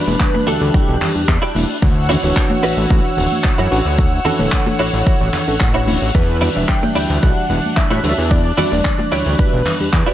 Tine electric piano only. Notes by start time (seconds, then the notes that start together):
0.06 E3 G3 D4
1.15 E3 G3 D4 G4
1.55 E3 G3 D4 E4
2.09 E3 C#4 D4 F#4
2.23 E3 D4 F#4 C#5
3.71 E3 C#4 D4 F#4
4.25 E3 C#4 D4 F#4
4.39 E3 D4 A4 C#5
5.47 E3 C#4 D4 A4
5.87 E3 C#4 D4 E4
6.41 E3 G3 D4 F#4
6.55 E3 G3 D4 E5
8.04 E3 G3 D4 F#4
8.58 E3 G3 D4 F#4
8.72 E3 G3 D4
9.80 E3 G3 D4 G4